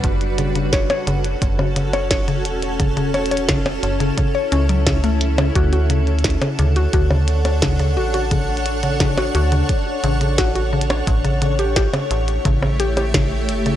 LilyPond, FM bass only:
\new Staff \with { instrumentName = "FM bass" } { \clef bass \time 4/4 \key d \major \tempo 4 = 87 fis,,4 r8 fis,,8 fis,,4. e,,8~ | e,,4. fis,,8 r8 cis,4. | d,4 r8 d,8 d,4. a,,8~ | a,,4. d,8 r8 a,,4. |
a,,4 r8 a,,8 a,,4. g,,8 | }